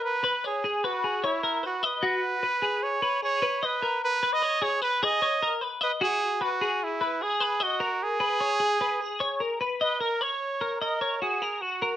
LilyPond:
<<
  \new Staff \with { instrumentName = "Clean electric guitar" } { \time 5/4 \key fis \mixolydian \tempo 4 = 151 ais'8 b'8 cis''8 gis'8 b'8 gis'8 cis''8 ais'8 b'8 dis''8 | fis'4 b'8 gis'4 b'8 gis'8 b'8 dis''8 ais'8~ | ais'8 b'8 cis''8 gis'8 b'8 gis'8 cis''8 ais'8 b'8 dis''8 | fis'4 b'8 gis'4 b'8 gis'8 b'8 dis''8 ais'8~ |
ais'8 b'8 cis''8 gis'8 b'8 gis'8 cis''8 ais'8 b'8 dis''8 | ais'8 cis''4 ais'8 dis''8 cis''8 fis'8 ais'8 fis'8 ais'8 | }
  \new Staff \with { instrumentName = "Trumpet" } { \time 5/4 \key fis \mixolydian b'4 gis'4 fis'4 e'4 fis'8 b'8~ | b'2 cis''4 cis''4 b'4 | b'8. dis''8. cis''8 b'8 dis''4~ dis''16 r8. b'8 | gis'4 fis'4 e'4 gis'4 fis'4 |
gis'1 r8 b'8 | ais'8 cis''4. ais'4 gis'4 fis'4 | }
>>